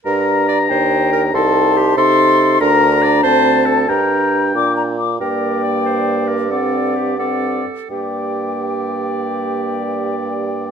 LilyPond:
<<
  \new Staff \with { instrumentName = "Flute" } { \time 6/8 \key g \minor \tempo 4. = 92 bes''4. g''4. | a''4. c'''4. | bes''4. a''4. | bes''4. d'''8 bes''8 d'''8 |
g''2. | fis''4. fis''4 r8 | g''2.~ | g''2. | }
  \new Staff \with { instrumentName = "Oboe" } { \time 6/8 \key g \minor bes''2. | c'''4. c'''4. | bes''4. a''4. | g''2~ g''8 r8 |
d''2. | d''4. d''4 r8 | d''2.~ | d''2. | }
  \new Staff \with { instrumentName = "Clarinet" } { \time 6/8 \key g \minor bes'4 d''8 c''4 bes'8 | a'4 g'8 a'4. | bes'4 d''8 c''4 a'8 | bes'4. r4. |
bes'4 d''8 c''4 bes'8 | a'4 g'8 a'4. | g'2.~ | g'2. | }
  \new Staff \with { instrumentName = "French horn" } { \time 6/8 \key g \minor d'2. | ees'4. ees'4. | d'4. c'4. | d'2~ d'8 r8 |
bes2. | c'4. c'4 r8 | bes2.~ | bes2. | }
  \new Staff \with { instrumentName = "Bassoon" } { \clef bass \time 6/8 \key g \minor g,4. ees,4. | c,4. c4. | d,4. d,4. | g,4. bes,4. |
g,2.~ | g,2~ g,8 r8 | g,2.~ | g,2. | }
>>